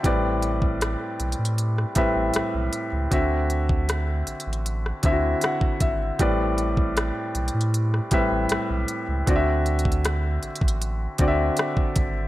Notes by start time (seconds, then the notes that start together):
0.03 A1 A2 G3 C4 B4 D5, kick, closed hi-hat
0.42 closed hi-hat
0.62 kick
0.81 cross-stick, closed hi-hat
1.20 B1, closed hi-hat
1.32 closed hi-hat
1.39 A2
1.45 closed hi-hat
1.58 closed hi-hat
1.78 cross-stick
1.95 A1 A2 G3 C4 B4 E5, kick, closed hi-hat
2.16 A1
2.34 B1, cross-stick, closed hi-hat
2.54 B1
2.73 closed hi-hat
2.92 C#2
3.11 D2 D3 C4 F#4 E5, kick, closed hi-hat
3.50 closed hi-hat
3.69 kick
3.89 cross-stick, closed hi-hat
4.27 A1, closed hi-hat
4.40 closed hi-hat
4.47 A1
4.53 closed hi-hat
4.66 closed hi-hat
4.86 cross-stick
5.03 D2 D3 C4 E4 E5, kick, closed hi-hat
5.11 F#4
5.41 F#5, cross-stick, closed hi-hat
5.61 kick
5.80 G#1 E5, kick, closed hi-hat
6.19 A1 A2 G3 C4 B4 D5, kick, closed hi-hat
6.58 closed hi-hat
6.77 kick
6.97 cross-stick, closed hi-hat
7.35 B1, closed hi-hat
7.48 closed hi-hat
7.54 A2
7.61 closed hi-hat
7.74 closed hi-hat
7.94 cross-stick
8.11 A1 A2 G3 C4 B4 E5, kick, closed hi-hat
8.32 A1
8.49 B1, cross-stick, closed hi-hat
8.70 B1
8.88 closed hi-hat
9.08 C#2
9.26 D2 D3 C4 F#4 D5, kick, closed hi-hat
9.36 E5
9.66 closed hi-hat
9.79 closed hi-hat
9.85 kick
9.92 closed hi-hat
10.05 cross-stick, closed hi-hat
10.43 A1, closed hi-hat
10.56 closed hi-hat
10.61 A1, kick
10.68 closed hi-hat
10.82 closed hi-hat
11.18 D2 D3 C4 F#4 D5, kick, closed hi-hat
11.28 E5
11.57 cross-stick, closed hi-hat
11.77 kick
11.96 G#1, kick, closed hi-hat